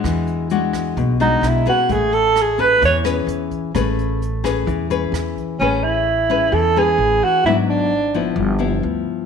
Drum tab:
HH |xxxxxxxx|xxxxxxxx|xxxxxxxx|--------|
SD |r--r--r-|--r--r--|r--r--r-|--------|
BD |o--oo--o|o--oo--o|o--oo--o|--------|

HH |--------|
SD |--------|
BD |--------|